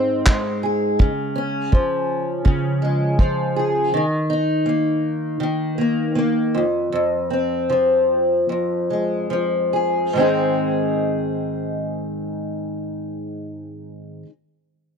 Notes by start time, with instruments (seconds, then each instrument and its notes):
Already playing: steel-string acoustic guitar G#2 G#3 C4 D#4
0.26 steel-string acoustic guitar G#3, kick, clap
0.63 steel-string acoustic guitar G#4
0.99 steel-string acoustic guitar C#3, kick
1.36 steel-string acoustic guitar C#4
1.72 steel-string acoustic guitar F3, kick
2.45 steel-string acoustic guitar C#3, kick
2.82 steel-string acoustic guitar G#3
3.19 steel-string acoustic guitar F3, kick
3.56 steel-string acoustic guitar G#4
3.94 steel-string acoustic guitar D#3
4.30 steel-string acoustic guitar D#4
4.66 steel-string acoustic guitar A#3
5.40 steel-string acoustic guitar D#3
5.78 steel-string acoustic guitar A#3
6.15 steel-string acoustic guitar A#3
6.55 steel-string acoustic guitar F2
6.92 steel-string acoustic guitar F2
7.30 steel-string acoustic guitar C4
7.70 steel-string acoustic guitar F3
8.49 steel-string acoustic guitar F2
8.90 steel-string acoustic guitar G#3
9.30 steel-string acoustic guitar F3
9.73 steel-string acoustic guitar G#4
10.13 steel-string acoustic guitar G#2 D#3 G#3
10.17 steel-string acoustic guitar C4 D#4 G#4